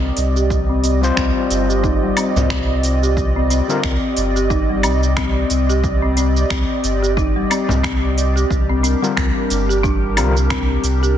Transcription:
0.00 0.11 C2 loud
0.00 0.34 C4 medium
0.00 8.47 C4 medium
0.00 11.18 G4 medium
0.00 8.47 D5 medium
0.00 8.46 D#5 medium
0.17 1.11 C2 medium
0.17 open hi-hat medium
0.17 shaker medium
0.36 0.50 G4 medium
0.36 shaker soft
0.50 kick loud
0.50 shaker soft
0.69 0.82 C4 medium
0.84 0.95 C4 medium
0.84 open hi-hat medium
0.84 shaker medium
1.01 3.64 G3 medium
1.01 3.65 C4 medium
1.01 3.65 F4 medium
1.01 3.66 C5 medium
1.01 shaker soft
1.17 1.31 C2 medium
1.17 1.67 C4 medium
1.17 finger snap loud
1.17 kick loud
1.17 shaker soft
1.50 2.11 G1 medium
1.50 open hi-hat medium
1.50 shaker medium
1.69 1.83 G4 medium
1.69 shaker soft
1.83 2.02 D#4 loud
1.83 kick loud
1.83 shaker soft
2.03 2.16 G3 medium
2.17 2.28 C4 medium
2.17 open hi-hat medium
2.17 low woodblock medium
2.17 shaker medium
2.36 3.61 C2 loud
2.36 frame drum medium
2.36 shaker soft
2.50 3.01 C4 medium
2.50 finger snap loud
2.50 kick loud
2.50 shaker soft
2.83 open hi-hat medium
2.83 shaker medium
3.03 3.17 G4 medium
3.03 shaker soft
3.17 kick loud
3.17 shaker soft
3.36 3.49 C4 medium
3.50 3.61 C4 medium
3.50 open hi-hat medium
3.50 shaker medium
3.68 3.91 D3 medium
3.68 3.92 G3 medium
3.68 3.92 C4 medium
3.68 3.92 F4 medium
3.68 3.92 A#4 medium
3.68 shaker soft
3.83 3.98 C2 medium
3.83 4.34 C4 medium
3.83 finger snap loud
3.83 kick loud
3.83 shaker soft
4.17 4.85 G1 medium
4.17 open hi-hat medium
4.17 shaker medium
4.36 4.50 G4 medium
4.36 shaker soft
4.50 4.68 D#4 loud
4.50 kick loud
4.50 shaker soft
4.69 4.82 G3 medium
4.83 5.45 C2 medium
4.83 4.95 C4 medium
4.83 open hi-hat medium
4.83 low woodblock medium
4.83 shaker medium
5.03 shaker soft
5.17 5.68 C4 loud
5.17 finger snap loud
5.17 kick loud
5.17 shaker soft
5.50 6.44 C2 medium
5.50 open hi-hat medium
5.50 shaker medium
5.69 5.83 G4 medium
5.69 shaker soft
5.84 kick loud
5.84 shaker soft
6.02 6.15 C4 medium
6.17 6.28 C4 medium
6.17 open hi-hat medium
6.17 shaker medium
6.37 shaker soft
6.50 6.65 C2 medium
6.50 7.01 C4 medium
6.50 finger snap loud
6.50 kick loud
6.50 shaker soft
6.84 7.45 G1 medium
6.84 open hi-hat medium
6.84 shaker medium
7.03 7.16 G4 medium
7.03 shaker soft
7.17 7.35 D#4 medium
7.17 kick loud
7.17 shaker soft
7.36 7.49 G3 medium
7.50 7.61 C4 medium
7.50 open hi-hat medium
7.50 low woodblock medium
7.50 shaker medium
7.69 8.45 C2 medium
7.69 frame drum medium
7.69 shaker soft
7.83 8.34 C4 medium
7.83 finger snap loud
7.83 kick loud
7.83 shaker soft
8.18 open hi-hat medium
8.18 shaker medium
8.36 8.50 G4 medium
8.36 shaker soft
8.50 8.95 C2 medium
8.50 11.18 G3 medium
8.50 11.18 D4 medium
8.50 11.18 A#4 medium
8.50 kick loud
8.50 shaker soft
8.69 8.82 C4 medium
8.83 8.94 C4 medium
8.83 open hi-hat medium
8.83 shaker medium
9.02 9.25 D3 medium
9.02 9.16 G3 medium
9.02 9.25 G3 medium
9.02 9.26 C4 medium
9.02 9.26 F4 medium
9.02 9.26 A#4 medium
9.02 shaker soft
9.17 9.31 C2 medium
9.17 9.67 C4 medium
9.17 finger snap loud
9.17 kick medium
9.17 shaker soft
9.50 10.19 G1 medium
9.50 open hi-hat medium
9.50 shaker medium
9.69 9.83 G4 medium
9.69 shaker soft
9.83 10.02 D4 loud
9.83 kick loud
9.83 shaker soft
10.17 10.78 C2 loud
10.17 10.34 D3 medium
10.17 10.34 G3 medium
10.17 10.28 C4 medium
10.17 10.34 C4 medium
10.17 10.35 F4 medium
10.17 10.35 A#4 medium
10.17 open hi-hat medium
10.17 low woodblock medium
10.17 shaker medium
10.37 shaker soft
10.50 11.01 C4 loud
10.50 finger snap loud
10.50 kick loud
10.50 shaker soft
10.83 11.18 C2 medium
10.83 open hi-hat medium
10.83 shaker medium
11.03 11.16 G4 medium
11.03 shaker soft

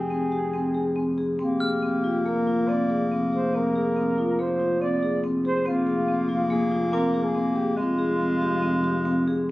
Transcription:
0.00 1.40 F1 medium
0.00 1.14 C4 medium
0.00 1.18 G#4 medium
0.10 0.24 C4 medium
0.32 0.46 G4 medium
0.53 0.67 C4 medium
0.75 0.88 G#4 medium
0.96 1.10 C4 medium
1.18 1.32 G#4 medium
1.39 5.67 F1 medium
1.39 5.36 A#3 medium
1.39 1.53 C4 medium
1.39 2.27 G4 medium
1.60 1.75 G#4 medium
1.60 2.18 F6 soft
1.83 1.96 C4 medium
2.04 2.18 F4 medium
2.25 2.39 A#3 medium
2.25 2.70 A#4 medium
2.47 2.61 F4 medium
2.68 2.83 C4 medium
2.68 3.11 D5 medium
2.90 3.04 G#4 medium
3.12 3.25 C4 medium
3.33 3.46 G#4 medium
3.33 3.57 C5 medium
3.54 3.67 C4 medium
3.54 4.42 A#4 medium
3.75 3.89 G#4 medium
3.96 4.10 C4 medium
4.18 4.32 F4 medium
4.39 4.53 A#3 medium
4.39 4.83 C5 medium
4.60 4.74 F4 medium
4.81 4.95 C4 medium
4.81 5.24 D5 loud
5.03 5.16 G#4 medium
5.24 5.37 C4 medium
5.45 5.58 G#4 medium
5.45 5.68 C5 medium
5.66 7.78 F1 medium
5.66 7.78 A#3 loud
5.66 5.79 C4 medium
5.66 6.50 F4 medium
5.87 6.00 G#4 medium
6.08 6.22 C4 medium
6.29 6.43 F4 medium
6.50 6.64 A#3 medium
6.50 6.90 G#4 medium
6.72 6.85 F4 medium
6.92 7.06 C4 medium
6.92 7.26 A#4 loud
6.92 7.49 D6 medium
7.14 7.27 G#4 medium
7.24 7.57 G#4 medium
7.35 7.48 C4 medium
7.55 7.76 G4 medium
7.55 7.70 G#4 medium
7.76 9.51 F1 medium
7.76 9.51 G#3 medium
7.76 7.91 C4 medium
7.76 9.45 F4 medium
7.99 8.12 G#4 medium
8.20 8.34 C4 medium
8.41 8.55 G4 medium
8.62 8.76 C4 medium
8.84 8.98 G4 medium
9.05 9.19 C4 medium
9.28 9.42 G#4 medium

